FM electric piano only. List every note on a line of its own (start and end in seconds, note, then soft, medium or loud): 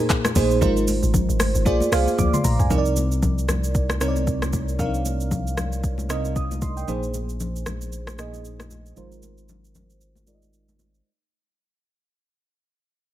0.00 0.35 A#2 medium
0.00 0.35 A#3 medium
0.00 0.36 D#4 medium
0.00 0.36 G#4 medium
0.00 0.28 A#4 medium
0.00 0.37 C5 loud
0.35 0.57 A#2 medium
0.35 0.57 A#3 medium
0.35 0.58 D#4 medium
0.35 0.58 G#4 medium
0.35 0.58 C5 loud
0.61 1.46 G#3 medium
0.61 1.46 D#4 medium
0.61 1.46 F4 medium
0.61 1.46 A#4 medium
0.61 1.47 C5 loud
1.65 1.87 A#3 medium
1.65 1.88 F4 medium
1.65 1.88 G#4 medium
1.65 1.88 C5 medium
1.65 1.88 D5 loud
1.92 2.35 A#3 medium
1.92 2.36 F4 medium
1.92 2.36 G#4 medium
1.92 2.36 C5 medium
1.92 2.36 F5 medium
2.18 2.33 D6 medium
2.34 2.44 C6 medium
2.45 2.59 A#5 medium
2.60 2.84 G#5 medium
2.70 3.55 C3 medium
2.70 3.55 C4 medium
2.70 3.55 D#4 medium
2.70 3.55 A#4 medium
2.70 2.78 C5 medium
2.78 3.58 D5 medium
4.00 4.65 C3 medium
4.00 4.65 C4 medium
4.00 4.65 D#4 medium
4.00 4.66 A#4 medium
4.00 4.09 C#5 medium
4.08 4.69 D5 medium
4.78 5.63 C3 medium
4.78 5.63 C4 medium
4.78 4.87 D4 medium
4.78 5.64 A#4 medium
4.78 5.64 F5 loud
4.86 5.67 D#4 medium
6.09 6.74 C3 medium
6.09 6.74 C4 medium
6.09 6.74 D#4 medium
6.09 6.74 A#4 medium
6.09 6.74 D#5 medium
6.36 6.61 D#6 medium
6.62 6.76 C6 medium
6.77 7.02 G5 medium
6.87 7.72 A#2 medium
6.87 7.72 A#3 medium
6.87 7.72 D#4 medium
6.87 7.73 G#4 medium
6.87 7.73 C5 medium
8.18 8.82 A#2 medium
8.18 8.83 A#3 medium
8.18 8.83 D#4 medium
8.18 8.83 G#4 medium
8.18 8.83 D#5 medium
8.96 9.81 G#3 medium
8.96 9.81 D#4 medium
8.96 9.81 F4 medium
8.96 9.81 A#4 medium
8.96 9.81 C5 medium
10.26 10.91 G#3 medium
10.26 10.91 D#4 medium
10.26 10.91 F4 medium
10.26 10.92 A#4 medium
10.26 10.35 D5 medium
10.34 10.95 D#5 medium